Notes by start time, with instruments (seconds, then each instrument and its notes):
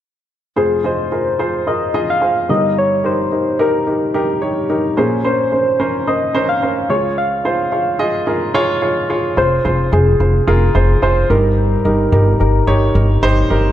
0.56 upright piano F1 F2 F4 G#4 C5, soft synth lead G#4
0.84 upright piano F4 G#4 D#5, soft synth lead C5
1.12 upright piano F4 G#4 A#4
1.39 upright piano F4 G#4 C5
1.67 upright piano F4 G#4 A#4, soft synth lead D#5
1.94 upright piano F4 G#4 D#5
2.10 soft synth lead F5
2.21 upright piano F4 G#4 C5
2.49 upright piano G1 G2 D#4 G4 A#4, soft synth lead D#5
2.78 soft synth lead C#5
3.04 upright piano D#4 G4 A#4, soft synth lead C5
3.32 upright piano D#4 G4 A#4
3.59 upright piano D#4 G4 A#4, soft synth lead A#4
3.87 upright piano D#4 G4 A#4
4.14 upright piano D#4 G4 A#4, soft synth lead G4
4.42 upright piano D#4 G4 C#5
4.70 upright piano D#4 G4 A#4
4.97 upright piano A#1 A#2 C#4 A#4 C5, soft synth lead G#4
5.24 upright piano C#4 A#4 C5, soft synth lead C5
5.52 upright piano C#4 A#4 C5
5.80 upright piano C#4 A#4 C5
6.07 upright piano C#4 A#4 C5, soft synth lead D#5
6.35 upright piano C#4 A#4 C5
6.49 soft synth lead F5
6.62 upright piano C#4 A#4 C5
6.89 upright piano C#2 C#3 F4 G#4 C#5, soft synth lead C#5
7.18 soft synth lead F5
7.45 upright piano F4 G#4 C5
7.72 upright piano F4 G#4 C#5
7.99 upright piano F4 G#4 D#5
8.27 upright piano F4 G#4 A#4
8.54 upright piano F4 G#4 C#5
8.82 upright piano F4 G#4 C#5
9.10 upright piano F4 G#4 C#5
9.37 upright bass F1, upright piano F4 G#4 C5, soft synth lead C5
9.65 upright bass F1, upright piano F4 G#4 C5
9.92 upright bass F1, upright piano F4 G#4 C5, soft synth lead G#4
10.20 upright bass F1, upright piano F4 G#4 C5
10.47 upright bass F1, upright piano F4 G#4 A#4, soft synth lead G#4
10.75 upright bass F1, upright piano F4 G#4 C5
11.02 upright bass F1, upright piano F4 G#4 C5, soft synth lead C5
11.30 upright bass G1, upright piano G2 D#4 G4 A#4, soft synth lead A#4
11.85 upright bass G1, upright piano D#4 G4 A#4
12.12 upright bass G1, upright piano D#4 G4 A#4
12.40 upright bass G1, upright piano D#4 G4 A#4, soft synth lead A#4
12.67 upright bass G1, upright piano D#4 G4 C#5
12.95 upright bass G1, upright piano D#4 G4 A#4
13.22 upright bass G1, upright piano D#4 G4 C5
13.50 upright bass G1, upright piano D#4 G4 A#4